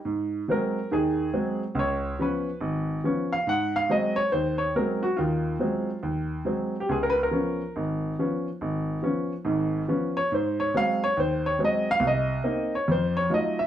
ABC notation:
X:1
M:4/4
L:1/16
Q:"Swing" 1/4=140
K:Abmix
V:1 name="Grand piano"
z4 B4 A6 z2 | d4 _c6 z4 f2 | g2 f2 e2 d2 c2 d2 B2 G2 | F8 z6 z =G |
A B _c B6 z6 z | z12 z2 d2 | c2 d2 f2 d2 c2 d2 e2 f2 | e6 d2 c2 d2 e2 _f2 |]
V:2 name="Grand piano" clef=bass
A,,4 [G,A,C]2 z2 [E,,E,]4 [G,A,C]2 z2 | D,,4 [F,_CD]2 z2 A,,,4 [F,CD]2 z2 | A,,4 [G,A,C]2 z2 E,,4 [G,A,C]2 z2 | [E,,E,]4 [G,A,C]2 z2 E,,4 [G,A,C]2 z2 |
D,,4 [F,_CD]2 z2 A,,,4 [F,CD]2 z2 | A,,,4 [F,_CD]2 z2 [A,,,A,,]4 [F,CD]2 z2 | A,,4 [G,A,C]2 z2 E,,4 [G,A,C]2 z2 | C,,4 [B,CE]2 z2 F,,4 [G,=A,EF]2 z2 |]